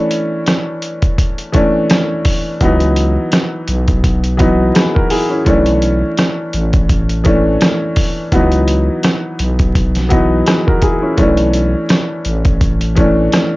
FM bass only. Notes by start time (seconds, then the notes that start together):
2.61 C#2
3.69 B1
5.47 B1
6.54 A1
8.33 C#2
9.40 B1
11.18 B1
12.26 A1